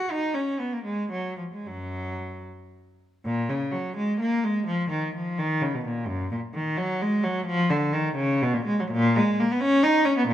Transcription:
0.00 0.11 F#4 medium
0.11 0.35 D#4 medium
0.34 0.60 C#4 medium
0.59 0.72 B3 medium
0.73 0.85 A#3 medium
0.84 1.10 G#3 medium
1.11 1.37 F#3 medium
1.38 1.43 F3 soft
1.53 1.66 G#3 medium
1.66 2.42 F#2 medium
1.66 2.46 F#3 medium
3.25 3.47 A#2 medium
3.49 3.73 C#3 medium
3.71 3.96 F#3 medium
3.96 4.20 G#3 medium
4.20 4.44 A#3 medium
4.44 4.68 G#3 medium
4.66 4.91 F3 medium
4.90 5.14 D#3 medium
5.15 5.39 F3 medium
5.38 5.62 D#3 medium
5.62 5.74 C#3 medium
5.74 5.86 B2 medium
5.85 6.09 A#2 medium
6.07 6.32 F#2 medium
6.31 6.39 A#2 medium
6.54 6.78 D#3 medium
6.77 7.01 F#3 medium
7.02 7.25 G#3 medium
7.23 7.47 F#3 medium
7.46 7.70 F3 loud
7.70 7.94 D3 medium
7.93 8.17 D#3 medium
8.15 8.40 C#3 medium
8.42 8.54 B2 loud
8.53 8.66 A#2 medium
8.65 8.78 G#3 medium
8.80 8.92 F#3 medium
8.91 9.15 A#2 loud
9.16 9.39 G#3 loud
9.40 9.50 A#3 medium
9.51 9.62 B3 medium
9.60 9.83 C#4 loud
9.83 10.06 D#4 loud
10.05 10.17 C#4 loud
10.18 10.28 B3 medium
10.28 10.34 A#2 loud

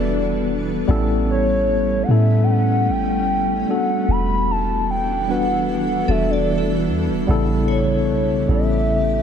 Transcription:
0.00 0.84 E1 medium
0.00 0.85 E3 medium
0.00 0.88 G3 medium
0.00 7.24 G3 medium
0.00 0.85 B3 medium
0.00 0.88 B3 medium
0.00 0.85 D4 medium
0.00 0.91 D4 medium
0.00 0.85 E4 medium
0.00 0.90 F#4 medium
0.00 0.90 A4 medium
0.00 0.86 B4 medium
0.00 1.24 B4 medium
0.00 0.49 D5 medium
0.88 2.04 A1 loud
0.88 1.74 G3 loud
0.88 3.65 A3 medium
0.88 1.75 B3 loud
0.88 3.65 C#4 medium
0.88 1.75 C#4 loud
0.88 1.76 E4 loud
0.88 1.76 A4 loud
1.30 2.04 C#5 medium
2.03 2.12 F#5 medium
2.08 2.90 A2 loud
2.08 3.23 G3 medium
2.08 3.24 B3 medium
2.08 3.24 C#4 medium
2.08 3.25 E4 medium
2.08 3.25 A4 medium
2.08 2.45 E5 medium
2.44 2.52 G5 medium
2.50 2.92 F#5 loud
2.88 3.64 G1 loud
2.88 3.69 G5 loud
3.68 7.25 E3 medium
3.68 4.96 G3 medium
3.68 7.25 B3 medium
3.68 4.96 B3 medium
3.68 7.25 D4 medium
3.68 4.97 D4 medium
3.68 7.25 E4 medium
3.68 4.97 F#4 medium
3.68 7.25 A4 medium
3.68 4.98 A4 medium
3.68 4.12 F#5 loud
4.08 6.04 E1 loud
4.08 4.52 B5 loud
4.51 4.90 A5 loud
4.91 5.32 G5 loud
5.28 5.86 G3 medium
5.28 5.86 B3 medium
5.28 5.86 D4 medium
5.28 5.87 F#4 medium
5.28 5.87 B4 medium
5.28 5.69 F#5 loud
5.71 6.12 F#5 loud
6.08 6.90 E1 loud
6.08 6.94 G3 medium
6.08 6.95 B3 medium
6.08 6.95 D4 medium
6.08 6.96 F#4 medium
6.08 7.64 A4 medium
6.08 6.96 A4 medium
6.08 6.32 E5 medium
6.30 6.89 D5 medium
6.30 7.87 D5 medium
6.58 8.09 E5 medium
6.88 7.10 E2 loud
7.08 7.27 E1 loud
7.27 8.10 A1 loud
7.27 9.22 C#3 medium
7.27 8.15 C#3 loud
7.27 8.14 G3 loud
7.27 9.22 A3 medium
7.27 8.15 B3 loud
7.27 8.15 E4 loud
7.27 9.22 G4 medium
7.27 8.16 A4 loud
7.68 9.22 C#5 medium
7.68 8.45 C#5 medium
8.08 8.46 B1 loud
8.48 9.22 A1 loud
8.48 9.22 G3 medium
8.48 9.22 B3 medium
8.48 9.22 C#4 medium
8.48 9.22 E4 medium
8.48 9.22 A4 medium
8.48 9.22 E5 loud

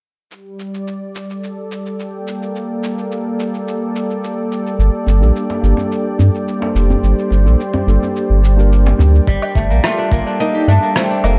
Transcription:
0.31 11.39 G3 medium
0.31 shaker soft
0.59 11.39 D5 medium
0.59 shaker medium
0.74 shaker soft
0.87 shaker soft
1.15 shaker medium
1.30 6.45 A4 medium
1.30 shaker soft
1.44 shaker soft
1.72 shaker medium
1.86 shaker soft
1.94 11.39 G5 medium
2.00 shaker soft
2.16 6.66 A#3 medium
2.28 shaker medium
2.42 shaker soft
2.56 shaker soft
2.84 shaker medium
2.99 shaker soft
3.12 shaker soft
3.40 shaker medium
3.54 shaker soft
3.68 shaker soft
3.96 shaker medium
4.11 shaker soft
4.24 shaker soft
4.52 shaker medium
4.66 shaker soft
4.79 4.90 G1 loud
4.79 shaker soft
5.06 5.23 G1 medium
5.06 djembe tone soft
5.06 shaker medium
5.21 5.31 A#1 medium
5.21 5.59 A#3 medium
5.21 5.60 D4 medium
5.21 5.60 G4 medium
5.21 5.61 A4 loud
5.21 shaker soft
5.36 shaker soft
5.50 djembe slap soft
5.61 5.74 G1 medium
5.61 6.57 A#3 medium
5.61 6.58 D4 medium
5.61 6.59 G4 medium
5.61 shaker medium
5.65 6.59 A4 medium
5.77 djembe tone medium
5.77 shaker soft
5.92 shaker soft
6.19 6.30 G2 medium
6.19 djembe bass medium
6.19 shaker medium
6.28 9.28 G4 medium
6.35 shaker soft
6.48 10.62 C5 medium
6.48 shaker soft
6.59 7.41 A#3 medium
6.59 7.42 D4 medium
6.59 7.43 G4 medium
6.59 djembe slap medium
6.63 7.43 A4 medium
6.75 6.96 F1 medium
6.75 shaker medium
6.90 djembe bass medium
6.90 shaker soft
7.03 7.14 G1 medium
7.03 shaker soft
7.19 shaker soft
7.31 7.47 G1 medium
7.31 djembe tone soft
7.31 shaker medium
7.45 7.56 A#1 medium
7.45 7.59 A#3 medium
7.45 7.60 D4 medium
7.45 7.60 G4 medium
7.45 7.60 A4 medium
7.45 djembe tone soft
7.45 shaker soft
7.60 shaker soft
7.74 djembe slap soft
7.74 djembe bass medium
7.87 7.98 G1 medium
7.87 8.40 A#3 medium
7.87 8.40 D4 medium
7.87 8.41 G4 medium
7.87 8.41 A4 medium
7.87 shaker medium
8.03 djembe tone medium
8.03 shaker soft
8.16 shaker soft
8.30 8.94 G1 medium
8.44 djembe slap soft
8.44 shaker medium
8.56 9.25 A#3 medium
8.56 9.26 D4 medium
8.56 9.26 G4 medium
8.56 shaker soft
8.60 9.27 A#4 loud
8.73 shaker soft
8.86 djembe slap medium
8.86 djembe tone medium
8.86 shaker soft
8.99 9.20 D2 loud
8.99 djembe slap soft
8.99 djembe bass medium
8.99 shaker medium
9.15 shaker soft
9.27 9.38 G1 loud
9.27 11.37 G3 loud
9.27 kick loud
9.27 shaker soft
9.42 10.54 G4 medium
9.42 low woodblock medium
9.55 9.72 G1 loud
9.55 9.76 A3 medium
9.55 11.39 A4 medium
9.55 kick medium
9.55 shaker medium
9.70 9.80 A#1 medium
9.70 9.90 A#3 medium
9.70 shaker soft
9.84 10.18 A3 medium
9.84 10.40 F4 medium
9.84 cross-stick medium
9.84 shaker soft
9.98 10.26 D4 medium
10.12 10.22 G1 medium
10.12 10.40 A#3 medium
10.12 kick medium
10.12 shaker medium
10.27 11.10 D4 medium
10.27 shaker soft
10.40 10.74 A#3 medium
10.40 10.68 D#4 medium
10.40 shaker soft
10.54 11.39 G4 medium
10.68 10.78 G2 loud
10.68 10.88 A3 medium
10.68 10.94 D4 medium
10.68 shaker medium
10.82 11.02 A#3 medium
10.82 shaker soft
10.96 11.30 A3 medium
10.96 11.39 C4 medium
10.96 cross-stick loud
10.96 shaker soft
11.10 11.39 D4 medium
11.24 11.39 F1 loud
11.24 11.39 A#3 medium
11.24 low woodblock medium
11.24 shaker medium

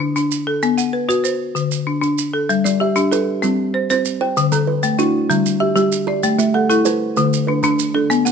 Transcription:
0.00 0.15 D4 medium
0.16 0.47 D4 medium
0.16 maracas soft
0.32 maracas medium
0.47 0.78 A4 medium
0.63 0.94 B3 medium
0.63 maracas medium
0.78 1.24 F#5 medium
0.78 maracas medium
0.93 1.08 B4 medium
1.09 1.40 F#4 medium
1.09 1.56 B4 medium
1.09 maracas soft
1.24 1.71 C5 medium
1.24 maracas medium
1.55 1.87 D3 medium
1.55 maracas soft
1.71 maracas medium
1.87 2.00 D4 medium
2.01 2.33 D4 medium
2.01 maracas soft
2.18 maracas medium
2.34 2.65 A4 medium
2.49 2.81 G3 medium
2.49 maracas medium
2.64 2.96 G3 medium
2.64 3.11 D5 medium
2.64 maracas medium
2.80 2.95 G4 medium
2.80 3.28 E5 medium
2.96 3.27 D4 medium
2.96 3.43 G4 medium
2.96 maracas medium
3.12 3.43 G4 medium
3.12 3.58 A4 medium
3.12 3.59 B4 medium
3.12 maracas medium
3.42 3.59 G3 medium
3.42 3.74 C4 medium
3.42 maracas medium
3.74 3.89 C5 medium
3.90 4.21 C4 medium
3.90 4.21 C5 medium
3.90 maracas soft
4.05 maracas medium
4.21 4.52 C5 medium
4.21 4.52 G5 medium
4.37 4.68 D3 medium
4.37 maracas medium
4.52 4.83 D3 medium
4.52 4.99 A4 medium
4.52 maracas medium
4.67 5.14 B4 medium
4.83 5.14 A3 medium
4.83 maracas medium
4.99 5.30 D4 medium
4.99 5.45 E4 medium
4.99 5.45 F#4 medium
4.99 maracas medium
5.30 5.45 D3 medium
5.30 5.61 G3 medium
5.30 maracas medium
5.46 maracas medium
5.60 5.74 G4 medium
5.60 6.07 E5 medium
5.76 6.07 G3 medium
5.76 6.07 G4 medium
5.76 maracas soft
5.92 maracas medium
6.07 6.39 G4 medium
6.07 6.39 D5 medium
6.23 6.55 A3 medium
6.23 maracas medium
6.38 6.70 A3 medium
6.38 6.85 E5 medium
6.38 maracas medium
6.54 6.68 A4 medium
6.54 7.01 F#5 medium
6.70 7.01 E4 medium
6.70 7.17 A4 medium
6.70 maracas medium
6.85 7.17 A4 medium
6.85 7.33 B4 medium
6.85 7.32 C5 medium
6.85 maracas medium
7.17 7.48 D3 medium
7.17 7.32 A3 medium
7.17 maracas medium
7.33 maracas medium
7.47 7.63 D4 medium
7.47 7.94 B4 medium
7.63 7.94 D3 medium
7.63 7.95 D4 medium
7.63 maracas medium
7.79 maracas medium
7.94 8.26 D4 medium
7.94 8.26 A4 medium
8.10 8.32 B3 medium
8.10 maracas medium
8.25 8.32 B3 medium
8.25 8.32 F#5 medium
8.25 maracas medium

